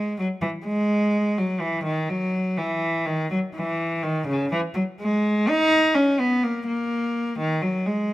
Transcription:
0.00 0.17 G#3 medium
0.19 0.27 F#3 medium
0.42 0.50 E3 medium
0.65 1.36 G#3 medium
1.38 1.62 F#3 medium
1.61 1.85 E3 medium
1.84 2.08 D#3 medium
2.09 2.57 F#3 medium
2.58 3.05 E3 medium
3.06 3.29 D#3 medium
3.30 3.38 F#3 medium
3.55 4.01 E3 medium
4.03 4.26 D#3 medium
4.27 4.50 C#3 medium
4.52 4.60 E3 medium
4.74 4.82 F#3 medium
5.00 5.47 G#3 medium
5.48 5.95 D#4 medium
5.94 6.18 C#4 medium
6.20 6.43 B3 medium
6.43 6.66 A#3 medium
6.67 7.37 A#3 medium
7.39 7.62 D#3 medium
7.62 7.85 F#3 medium
7.86 8.13 G#3 medium

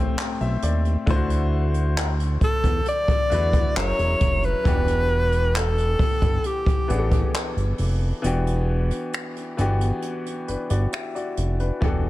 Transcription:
0.00 0.78 A2 medium
0.00 0.78 A3 medium
0.00 0.79 C4 medium
0.00 0.80 G4 medium
0.00 0.80 C5 medium
0.17 0.39 G5 medium
0.17 clap loud
0.17 closed hi-hat medium
0.41 0.58 B1 medium
0.41 0.61 E5 medium
0.41 closed hi-hat medium
0.62 0.97 D#2 medium
0.62 1.05 D5 medium
0.62 closed hi-hat medium
0.85 closed hi-hat soft
1.06 2.38 D2 loud
1.06 2.48 D3 medium
1.06 2.48 A3 medium
1.06 2.49 E4 medium
1.06 1.15 F4 medium
1.06 kick loud
1.06 closed hi-hat medium
1.10 2.50 C5 loud
1.16 2.52 F#4 medium
1.30 closed hi-hat medium
1.74 closed hi-hat soft
1.97 clap loud
1.97 closed hi-hat medium
2.20 closed hi-hat medium
2.41 2.50 E2 soft
2.41 2.84 A4 medium
2.41 kick medium
2.41 closed hi-hat medium
2.64 2.81 E2 medium
2.64 kick medium
2.64 closed hi-hat medium
2.85 3.73 D5 loud
2.85 closed hi-hat medium
3.08 3.18 E2 soft
3.08 kick medium
3.08 closed hi-hat medium
3.30 3.66 E2 loud
3.30 3.75 D3 medium
3.30 3.76 A3 medium
3.30 3.76 E4 medium
3.30 3.77 F#4 medium
3.30 closed hi-hat medium
3.34 3.77 B4 medium
3.53 kick loud
3.53 closed hi-hat medium
3.75 3.93 F#1 loud
3.75 4.47 F#3 medium
3.75 4.48 C#4 medium
3.75 4.48 E4 medium
3.75 4.49 G#4 medium
3.75 4.49 A#4 medium
3.75 4.46 C#5 loud
3.75 clap loud
3.75 closed hi-hat medium
3.99 4.16 E1 medium
3.99 closed hi-hat soft
4.20 4.55 F1 medium
4.20 kick medium
4.20 closed hi-hat medium
4.43 5.58 B4 loud
4.43 closed hi-hat soft
4.64 5.96 E1 loud
4.64 6.06 E3 medium
4.64 6.06 B3 medium
4.64 6.07 D4 medium
4.64 6.07 F#4 medium
4.64 6.08 G4 medium
4.64 kick loud
4.64 closed hi-hat medium
4.88 closed hi-hat medium
5.32 closed hi-hat soft
5.55 6.48 A4 loud
5.55 clap loud
5.55 closed hi-hat medium
5.78 closed hi-hat medium
5.99 6.09 G1 soft
5.99 kick medium
5.99 open hi-hat soft
6.22 6.39 G1 medium
6.22 kick medium
6.22 closed hi-hat medium
6.44 7.35 G4 medium
6.44 closed hi-hat medium
6.66 6.76 A1 soft
6.66 kick medium
6.66 closed hi-hat medium
6.88 7.24 A1 medium
6.88 7.94 E3 medium
6.88 7.95 B3 medium
6.88 7.95 D4 medium
6.88 6.97 G#4 medium
6.88 7.96 F#5 medium
6.88 closed hi-hat medium
6.98 8.00 A4 medium
7.11 kick loud
7.11 closed hi-hat medium
7.34 clap loud
7.34 closed hi-hat medium
7.57 7.74 G1 medium
7.57 closed hi-hat medium
7.78 8.13 F1 medium
7.78 open hi-hat medium
8.22 8.92 E1 loud
8.22 9.29 E3 medium
8.22 9.29 B3 medium
8.22 9.30 D4 medium
8.22 9.30 F#4 medium
8.22 closed hi-hat medium
8.26 9.31 G4 medium
8.47 closed hi-hat soft
8.91 closed hi-hat soft
9.13 finger snap loud
9.13 closed hi-hat medium
9.36 closed hi-hat medium
9.57 9.92 G1 medium
9.57 10.46 E3 medium
9.57 10.46 B3 medium
9.57 10.47 D4 medium
9.57 10.47 F#4 medium
9.57 10.48 G4 medium
9.57 closed hi-hat medium
9.81 closed hi-hat medium
10.02 closed hi-hat medium
10.26 closed hi-hat soft
10.48 10.57 G1 soft
10.48 10.69 D4 medium
10.48 10.69 B4 medium
10.48 closed hi-hat medium
10.70 10.87 G1 medium
10.70 10.92 F#4 medium
10.70 10.92 D5 medium
10.70 closed hi-hat medium
10.92 11.14 G4 medium
10.92 11.14 E5 medium
10.92 finger snap loud
10.92 closed hi-hat medium
11.15 11.58 F#4 medium
11.15 11.57 D5 medium
11.15 closed hi-hat soft
11.37 11.71 F1 medium
11.37 closed hi-hat medium
11.59 11.81 D4 medium
11.59 12.02 B4 medium
11.59 closed hi-hat soft
11.81 12.10 E1 loud
11.81 12.10 E3 medium
11.81 12.10 B3 medium
11.81 12.10 D4 medium
11.81 12.10 F#4 medium
11.81 12.10 G4 medium
11.81 kick loud
11.85 12.10 A4 medium

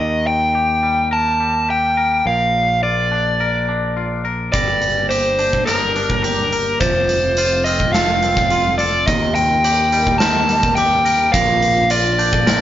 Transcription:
0.00 2.22 D#2 medium
0.00 1.41 D#3 medium
0.00 0.27 D#5 medium
0.27 1.08 G5 medium
0.55 1.67 G4 medium
0.83 1.39 G3 soft
1.11 1.97 A#4 medium
1.11 1.70 A5 medium
1.40 2.26 G3 soft
1.69 2.26 G4 soft
1.69 2.26 G5 medium
1.97 3.40 A#4 medium
2.26 4.50 A#1 medium
2.26 3.68 A#2 soft
2.26 2.83 F5 medium
2.83 3.95 F4 soft
2.83 4.21 D5 medium
3.11 3.67 D4 medium
3.40 4.23 A#4 medium
3.69 4.54 D4 soft
3.97 4.54 F4 soft
4.25 4.53 A#4 soft
4.52 6.77 G1 medium
4.52 5.95 G3 medium
4.52 6.79 A#3 medium
4.52 6.78 D4 medium
4.52 6.78 G4 medium
4.52 5.06 D5 medium
4.52 5.10 A#6 medium
4.52 kick medium
4.52 closed hi-hat medium
4.82 closed hi-hat soft
5.09 6.23 G4 medium
5.09 5.65 C5 medium
5.09 closed hi-hat medium
5.39 5.95 D4 medium
5.39 5.96 G6 medium
5.39 closed hi-hat soft
5.53 kick medium
5.66 6.22 A#4 medium
5.66 6.52 A#4 medium
5.66 cross-stick medium
5.66 closed hi-hat medium
5.96 6.81 D4 soft
5.96 closed hi-hat soft
6.10 kick medium
6.23 6.81 G4 soft
6.23 6.80 A#4 medium
6.23 6.81 D6 medium
6.23 closed hi-hat medium
6.52 6.81 A#4 medium
6.52 closed hi-hat medium
6.80 9.03 F1 medium
6.80 8.23 F3 medium
6.80 9.06 A3 medium
6.80 9.06 C4 medium
6.80 9.05 F4 medium
6.80 7.62 C5 medium
6.80 7.38 A6 medium
6.80 kick medium
6.80 closed hi-hat medium
7.09 closed hi-hat soft
7.37 8.50 F4 medium
7.37 closed hi-hat medium
7.64 8.22 C4 medium
7.64 7.92 D#5 medium
7.64 8.23 F6 medium
7.64 closed hi-hat soft
7.80 kick medium
7.93 8.79 A4 medium
7.93 8.74 F5 medium
7.93 snare medium
7.93 closed hi-hat medium
8.23 9.08 C4 soft
8.23 closed hi-hat soft
8.37 kick medium
8.37 snare soft
8.50 9.08 F4 medium
8.50 9.08 C6 medium
8.50 closed hi-hat medium
8.78 9.08 A4 medium
8.78 9.05 D5 medium
8.78 closed hi-hat soft
9.07 11.30 D#2 medium
9.07 11.32 D#3 medium
9.07 10.49 D#3 medium
9.07 11.32 D#4 medium
9.07 11.32 G4 medium
9.07 11.32 A#4 medium
9.07 9.34 D#5 medium
9.07 9.64 A#6 medium
9.07 kick medium
9.07 closed hi-hat medium
9.35 10.16 G5 medium
9.35 closed hi-hat soft
9.64 10.77 G4 medium
9.64 closed hi-hat medium
9.92 10.48 G3 medium
9.92 10.49 G6 medium
9.92 closed hi-hat soft
10.07 kick medium
10.18 11.04 A#4 medium
10.18 10.75 A5 medium
10.18 snare medium
10.18 closed hi-hat medium
10.49 11.34 G3 medium
10.49 closed hi-hat soft
10.63 kick medium
10.75 11.34 G4 soft
10.75 11.32 G5 medium
10.75 11.34 D6 medium
10.75 closed hi-hat medium
11.05 11.34 A#4 medium
11.05 closed hi-hat medium
11.33 12.61 A#1 medium
11.33 12.61 A#2 medium
11.33 12.61 D4 medium
11.33 12.61 F4 medium
11.33 11.91 F5 medium
11.33 11.90 A#6 medium
11.33 kick medium
11.33 closed hi-hat medium
11.37 12.61 A#3 medium
11.62 closed hi-hat medium
11.90 12.61 F4 medium
11.90 12.61 D5 medium
11.90 closed hi-hat medium
12.19 12.61 D4 medium
12.19 12.61 G6 medium
12.19 closed hi-hat medium
12.33 kick medium
12.47 12.61 A#4 medium
12.47 snare medium
12.47 closed hi-hat medium

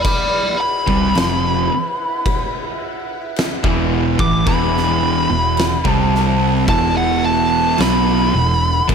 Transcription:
0.00 8.95 E4 medium
0.00 4.43 B4 medium
0.00 8.95 F#5 medium
0.05 0.56 D5 medium
0.05 0.59 B5 loud
0.05 kick loud
0.05 crash medium
0.61 2.78 B5 loud
0.87 1.13 C2 medium
0.87 1.13 C3 medium
0.87 1.14 G3 loud
0.87 kick loud
1.14 1.67 F1 loud
1.14 1.68 F2 medium
1.14 1.69 C3 medium
1.14 1.69 F3 medium
1.14 snare loud
1.14 crash medium
2.26 kick loud
2.26 crash medium
3.36 snare loud
3.36 crash medium
3.64 4.15 E1 medium
3.64 4.18 E2 loud
3.64 4.18 B2 loud
3.64 4.18 E3 loud
3.64 kick loud
4.19 4.45 A1 medium
4.19 4.45 A2 medium
4.19 4.46 E3 loud
4.19 4.47 D6 loud
4.19 kick loud
4.46 5.26 E1 medium
4.46 5.28 E2 medium
4.46 5.29 B2 loud
4.46 5.29 E3 loud
4.46 8.95 A4 medium
4.46 5.89 B5 loud
4.46 kick loud
4.46 crash medium
4.77 snare soft
5.29 5.82 E1 medium
5.29 5.74 E2 medium
5.29 5.74 B2 medium
5.57 snare loud
5.57 crash medium
5.85 6.64 C2 medium
5.85 6.66 C3 loud
5.85 6.67 G3 loud
5.85 6.67 C4 loud
5.85 6.65 A5 loud
5.85 kick loud
6.15 snare soft
6.67 7.75 E1 loud
6.67 7.76 E2 medium
6.67 7.76 B2 loud
6.67 7.77 E3 loud
6.67 6.96 A5 loud
6.67 kick loud
6.67 crash medium
6.97 7.23 F#5 medium
7.25 7.78 A5 medium
7.78 8.30 B1 loud
7.78 8.32 B2 medium
7.78 8.32 F#3 loud
7.78 8.32 B3 loud
7.78 8.87 B5 loud
7.78 snare loud
7.78 crash medium
8.33 8.85 E1 medium
8.33 8.78 E2 medium
8.33 8.78 B2 medium
8.88 8.95 A#1 medium
8.88 8.95 A#2 medium
8.88 8.95 F3 loud
8.88 8.95 A#3 loud
8.88 kick loud
8.88 crash medium

